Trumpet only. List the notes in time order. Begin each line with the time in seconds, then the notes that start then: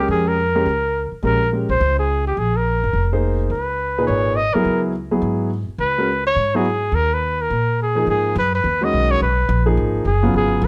0.11 G#4
0.28 A#4
1.25 A#4
1.70 C5
1.99 G#4
2.27 G4
2.38 G#4
2.56 A#4
3.51 B4
4.07 C#5
4.36 D#5
4.54 A#4
5.80 B4
6.27 C#5
6.56 G#4
6.95 A#4
7.14 B4
7.41 A#4
7.82 G#4
8.10 G#4
8.39 B4
8.55 B4
8.84 D#5
9.11 C#5
9.22 B4
10.06 G#4
10.36 G#4